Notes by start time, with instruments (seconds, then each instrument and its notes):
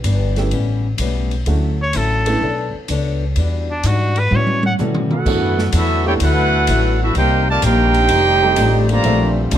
0.04 upright bass G1, steel-string acoustic guitar E3 B3 D4 G4, hi-hat pedal, ride
0.36 grand piano A3 B3 C#4 E4 G4, snare, ride
0.51 upright bass A1, steel-string acoustic guitar A2 G3 B3 C#4, ride
0.98 upright bass B1, steel-string acoustic guitar A2 G3 B3 C#4, hi-hat pedal, ride
1.31 ride
1.46 upright bass D2, steel-string acoustic guitar D3 F#3 C#4 E4, grand piano A3 C#4 D4 E4 F#4, ride
1.82 trumpet C#5
1.93 upright bass A1, steel-string acoustic guitar D3 F#3 C#4 E4, trumpet A4, hi-hat pedal, ride
2.26 grand piano A3 B3 C#4 D4 E4, ride
2.42 upright bass B1, steel-string acoustic guitar B3 D4 A4 C#5
2.75 muted upright bass stroke
2.88 upright bass C#2, steel-string acoustic guitar B3 D4 A4 C#5, hi-hat pedal, ride
3.36 upright bass E2, steel-string acoustic guitar E3 G3 D4, ride
3.40 steel-string acoustic guitar F#4
3.71 trumpet D4
3.83 upright bass G#2, steel-string acoustic guitar E3 G3 D4 F#4, trumpet F#4, hi-hat pedal, ride
4.16 trumpet B4, ride
4.31 upright bass A2, steel-string acoustic guitar A2 G3 C#4 F#4, grand piano G3 B3 C#4 E4 F#4, high tom
4.36 trumpet C#5
4.47 high tom
4.63 trumpet F#5, high tom
4.79 steel-string acoustic guitar A2 G3 C#4 F#4, upright bass B2, grand piano G3 B3 C#4 E4 A4, hi-hat pedal, mid tom
4.95 mid tom
5.10 trombone section A3 B3 F#4, trumpet section E4 A4 B4 F#5, mid tom
5.26 upright bass F#2, steel-string acoustic guitar D3 F#3 B3 E4, trombone section E3 B3 D4 F#4, grand piano A3 B3 D4 E4 F#4, kick, crash
5.59 snare
5.72 upright bass E2, steel-string acoustic guitar D3 F#3 B3 E4, trombone section A3 B3 E4, trumpet section B3 F#4 A4 E5, hi-hat pedal, ride
6.05 grand piano A3 B3 D4 E4 F#4, trumpet section E4 A4 C#5 G5, trombone section G4
6.20 upright bass D2, steel-string acoustic guitar D3 F#3 B3 E4, trombone section A3 B3 F#4, trumpet section E4 A4 B4 F#5, ride
6.67 upright bass A1, steel-string acoustic guitar D3 F#3 B3 E4, hi-hat pedal, ride
7.01 trombone section A3 B3 E4, trumpet section B3 F#4 A4 E5
7.15 upright bass C2, steel-string acoustic guitar C3 G3 A#3 D#4, trombone section D#3 A#3 C4 D#4 G4, trumpet section D#4 A#4 C5 G5, ride
7.48 trombone section A3, trumpet section F4 A#4 D5 A5
7.62 upright bass A#1, steel-string acoustic guitar C3 G3 A#3 D#4, trombone section A#3 D#4 G4, trumpet section D#4 A#4 C5 G5, hi-hat pedal, ride
7.94 ride
8.09 upright bass F1, steel-string acoustic guitar F2 D#3 A3, trombone section G3 D5, ride
8.13 steel-string acoustic guitar D4
8.42 grand piano G3 C4 D#4 A4 D5
8.56 upright bass A1, steel-string acoustic guitar F2 D#3 A3 D4, hi-hat pedal, ride
8.89 trombone section D3 F3 A#3, trumpet section F4 C5 D5 A#5, ride
9.04 upright bass A#1, steel-string acoustic guitar A#2 E3 A3 D4, trombone section D3 C4 F4, grand piano F3 A3 C4 D4 E5, ride
9.51 upright bass C2, steel-string acoustic guitar A#2 E3 A3 D4, trombone section D3 F3 A3, trumpet section F4 C5 D5 A5, hi-hat pedal, ride